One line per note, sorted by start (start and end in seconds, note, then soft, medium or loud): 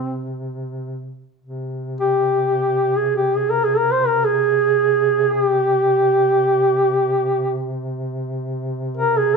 0.00 1.25 C3 soft
0.00 0.33 C4 medium
1.42 9.37 C3 soft
2.00 2.98 G4 medium
2.97 3.15 G#4 medium
3.16 3.38 G4 medium
3.36 3.52 G#4 medium
3.50 3.66 A#4 medium
3.64 3.79 G#4 medium
3.77 3.93 A#4 medium
3.92 4.08 C5 medium
4.07 4.27 A#4 medium
4.25 5.31 G#4 medium
5.31 5.44 G#4 medium
5.44 7.74 G4 medium
8.97 9.19 A#4 medium
9.17 9.36 G#4 medium